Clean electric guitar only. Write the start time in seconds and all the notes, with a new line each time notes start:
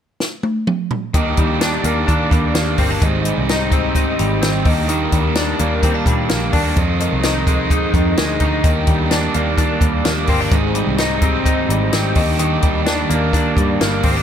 1.15 D#3
1.38 G3
1.61 D4
1.85 A#3
2.07 D4
2.30 G3
2.54 A#3
2.79 C4
2.91 D4
3.03 G#2
3.26 G3
3.50 D#4
3.73 C4
3.96 D#4
4.19 G3
4.42 C4
4.66 D#3
4.89 D#3
5.12 G3
5.36 D4
5.60 A#3
5.83 C4
5.94 D4
6.06 G3
6.29 A#3
6.53 D4
6.77 F2
7.00 D#3
7.23 D#4
7.48 G#3
7.71 D#4
7.94 D#3
8.18 G#3
8.41 D#4
8.64 D#3
8.87 G3
9.11 D4
9.34 A#3
9.57 D4
9.80 G3
10.05 A#3
10.29 C4
10.41 D4
10.52 G#2
10.75 G3
10.99 D#4
11.23 C4
11.45 D#4
11.69 G3
11.93 C4
12.16 D#3
12.39 D#3
12.62 G3
12.86 D4
13.09 A#3
13.33 D4
13.57 G3
13.81 A#3
14.04 C4
14.16 D4